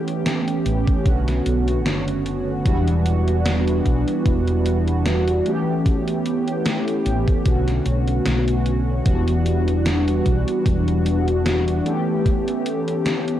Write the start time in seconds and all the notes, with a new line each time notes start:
Already playing: E3 A3 B3 C#4 G4
0.08 closed hi-hat
0.26 snare, closed hi-hat
0.48 closed hi-hat
0.66 A1, closed hi-hat
0.87 kick, closed hi-hat
1.04 B1 D3 A3 B3 C#4 F#4, kick, closed hi-hat
1.28 snare, closed hi-hat
1.46 B1, closed hi-hat
1.68 closed hi-hat
1.86 F#1, snare, closed hi-hat
2.08 closed hi-hat
2.26 closed hi-hat
2.64 E1 E3 G3 B3 D4 F#4, kick, closed hi-hat
2.88 closed hi-hat
3.06 closed hi-hat
3.28 closed hi-hat
3.46 snare, closed hi-hat
3.68 closed hi-hat
3.86 B1, kick, closed hi-hat
4.08 closed hi-hat
4.26 E1, kick, closed hi-hat
4.48 closed hi-hat
4.66 closed hi-hat
4.88 closed hi-hat
5.06 snare, closed hi-hat
5.28 closed hi-hat
5.44 E3 A3 B3 C#4 G4, closed hi-hat
5.86 kick, closed hi-hat
6.08 closed hi-hat
6.26 closed hi-hat
6.48 closed hi-hat
6.66 snare, closed hi-hat
6.88 closed hi-hat
7.06 A1, closed hi-hat
7.28 kick, closed hi-hat
7.44 B1 D3 A3 B3 C#4 F#4, kick, closed hi-hat
7.68 snare, closed hi-hat
7.86 B1, closed hi-hat
8.08 closed hi-hat
8.26 B1, snare, closed hi-hat
8.48 closed hi-hat
8.66 closed hi-hat
9.04 E1 E3 G3 B3 D4 F#4, kick, closed hi-hat
9.28 closed hi-hat
9.46 closed hi-hat
9.68 closed hi-hat
9.86 snare, closed hi-hat
10.08 closed hi-hat
10.26 B1, kick, closed hi-hat
10.48 closed hi-hat
10.66 E1, kick, closed hi-hat
10.88 closed hi-hat
11.06 closed hi-hat
11.28 closed hi-hat
11.46 snare, closed hi-hat
11.68 closed hi-hat
11.84 E3 A3 B3 C#4 G4, closed hi-hat
12.26 kick, closed hi-hat
12.48 closed hi-hat
12.66 closed hi-hat
12.88 closed hi-hat
13.06 snare, closed hi-hat
13.28 closed hi-hat